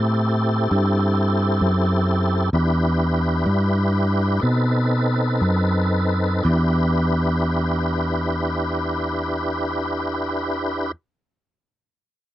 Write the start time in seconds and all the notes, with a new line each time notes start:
Already playing: A2 C4 E4 G4 A4
0.71 G2
1.61 F#2
2.53 E2 D4 E4 G4 B4
3.46 G2
4.41 B2 C4 D#4 A4 B4
5.41 F#2
6.43 E2 D4 E4 G4 B4